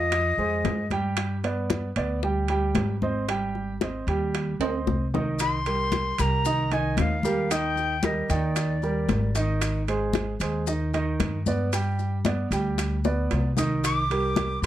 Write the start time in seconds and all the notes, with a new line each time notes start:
Already playing: F2 F3 F4 D#5 F5
0.12 high bongo, high conga, high timbale
0.38 F2 G#3 G#4 C5, high bongo, high conga
0.65 G2, high bongo, low bongo, high conga, high timbale, low timbale
0.90 G3 G4 G5, high bongo, high conga, high timbale
1.17 high bongo, high conga, high timbale
1.44 B3 B4 D5, high bongo, high conga, high timbale
1.70 high bongo, high conga, high timbale
1.96 D2 B3 B4 D5, high conga, high timbale
2.23 G3 G4 G5, high bongo, high conga
2.48 G3 G4 G5, high bongo, high conga, high timbale
2.75 G#1, high bongo, low bongo, high conga, high timbale, low timbale
3.02 C4 C5 D#5, high bongo, high conga
3.29 G3 G4 G5, high bongo, high conga, high timbale
3.55 high bongo, high conga
3.81 C4 C5 D#5, high bongo, high conga, high timbale
4.07 D#2 G3 G4 G5, high conga, high timbale
4.34 high bongo, high conga, high timbale
4.60 D2 C4 C5 D#5, high bongo, high conga, high timbale
4.87 C2, high bongo, high conga
5.14 D#3 D#4 D#5, low bongo, high conga, low timbale
5.39 C6, high bongo, high conga, high timbale, maracas
5.66 G3 G4 A#4, high bongo, high conga, high timbale, maracas
5.92 high bongo, high conga, high timbale, maracas
6.18 C2 G3 G4 A#4 A#5, high conga, high timbale, maracas
6.44 D#3 D#4 D#5, high bongo, high conga, maracas
6.71 D#3 D#4 D#5 G#5, high bongo, high conga, high timbale, maracas
6.97 D#2 F5, high bongo, low bongo, high conga, high timbale, low timbale, maracas
7.23 G3 G4 A#4, high bongo, high conga, maracas
7.50 D#3 D#4 D#5 G5, high bongo, high conga, high timbale, maracas
7.76 high bongo, high conga, maracas
8.03 G3 G4 A#4 D#5, high bongo, high conga, high timbale, maracas
8.28 D#2 D#3 D#4 D5 G5, high conga, high timbale, maracas
8.56 high bongo, high conga, high timbale, maracas
8.82 G3 G4 A#4, high bongo, high conga, maracas
9.09 G#1, high bongo, low bongo, high conga, high timbale, low timbale, maracas
9.35 D#3 D#4 D#5, high bongo, high timbale, maracas
9.61 high bongo, high conga, high timbale, maracas
9.88 G#3 G#4 C5, high bongo, high conga, high timbale, maracas
10.13 high bongo, high conga, high timbale, maracas
10.40 D#2 G#3 G#4 C5, high conga, high timbale, maracas
10.67 D#3 D#4 D#5, high bongo, high conga, maracas
10.94 D#3 D#4 D#5, high bongo, high conga, high timbale, maracas
11.20 G2, high bongo, low bongo, high conga, high timbale, maracas
11.46 B3 B4 D5, high bongo, high conga, maracas
11.73 G3 G4 G5, high bongo, high conga, high timbale, maracas
11.99 high bongo, high conga, maracas
12.25 B3 B4 D5, high bongo, high conga, high timbale, maracas
12.51 D2 G3 G4 G5, high conga, high timbale, maracas
12.78 high bongo, high conga, high timbale, maracas
13.04 B3 B4 D5, high bongo, high conga, maracas
13.31 C2, high conga, high timbale, low timbale, maracas
13.57 D#3 D#4 D#5, low bongo, high conga, high timbale, maracas
13.83 D6, high bongo, high conga, high timbale, maracas
14.10 G3 G4 A#4, high bongo, high conga, high timbale, maracas
14.36 high bongo, high conga, high timbale, maracas
14.62 G2 C6, high conga